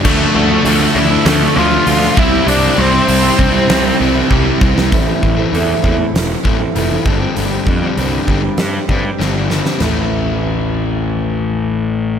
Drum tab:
CC |x---------------|----------------|----------------|----------------|
HH |----o---o---o---|o---o---o-------|o---o---o---o---|o---o---o-------|
SD |--------o----o--|--------o------o|--------o-------|--------o---o-oo|
FT |----------------|----------------|----------------|----------------|
BD |o-------------o-|------o-----o-o-|o-o---o---o---o-|--o---o---o-----|

CC |x---------------|
HH |----------------|
SD |o---------------|
FT |o---------------|
BD |----------------|